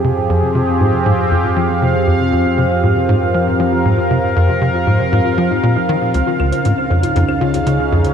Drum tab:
HH |----------------|----------------|----------------|x--xx--xx--xx--x|
CL |----------------|----------------|----------------|--x------x------|